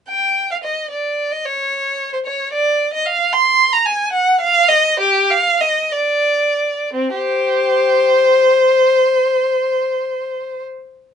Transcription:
0.09 0.47 G5 medium
0.51 0.57 F5 medium
0.64 0.91 D#5 soft
0.91 1.31 D5 soft
1.32 1.46 D#5 medium
1.45 2.13 C#5 medium
2.13 2.18 C5 medium
2.26 2.52 C#5 medium
2.53 2.92 D5 medium
2.93 3.06 D#5 medium
3.06 3.32 F5 medium
3.33 3.72 C6 medium
3.73 3.86 A#5 medium
3.86 4.13 G#5 medium
4.12 4.39 F#5 medium
4.41 4.69 F5 medium
4.69 4.99 D#5 medium
5.00 5.30 G4 medium
5.30 5.61 F5 medium
5.61 5.92 D#5 medium
5.92 6.94 D5 medium
6.93 7.14 C4 medium
7.14 8.46 G4 medium
7.14 10.63 C5 medium

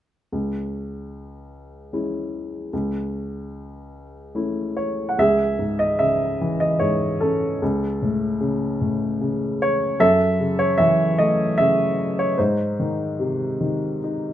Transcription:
0.32 2.68 C#2 soft
1.93 2.70 G#3 soft
1.93 2.70 C#4 soft
1.93 2.70 E4 soft
2.73 5.14 C#2 soft
4.35 5.15 A3 soft
4.35 5.15 C#4 soft
4.35 5.15 E4 soft
4.77 5.12 C#5 medium
5.09 5.17 F#5 soft
5.18 7.58 C#2 soft
5.18 6.37 G#4 medium
5.18 5.76 E5 medium
5.59 6.79 G#2 soft
5.79 6.00 D#5 medium
5.99 7.58 C#3 soft
5.99 6.62 E5 medium
6.41 7.58 E3 soft
6.60 6.81 D#5 medium
6.79 7.59 G#2 soft
6.79 7.22 C#5 medium
7.21 8.38 C#4 soft
7.21 8.37 A4 medium
7.62 9.96 C#2 medium
8.02 8.80 A2 soft
8.41 9.20 C#3 soft
8.81 9.96 A2 soft
9.21 9.97 C#3 soft
9.62 10.02 C#5 medium
10.00 12.35 F#2 medium
10.00 11.15 A4 medium
10.00 10.61 E5 medium
10.40 11.58 C#3 soft
10.59 10.79 C#5 medium
10.78 12.35 E3 medium
10.78 11.15 E5 medium
11.18 12.36 A3 soft
11.18 11.56 D#5 medium
11.58 12.37 C#3 soft
11.58 12.14 E5 medium
12.19 12.39 C#5 medium
12.38 14.33 G#2 medium
12.38 13.99 D#4 soft
12.38 13.98 C5 medium
12.80 13.59 D#3 soft
13.20 14.33 C3 soft
13.61 14.33 D#3 soft
14.04 14.33 D#4 soft

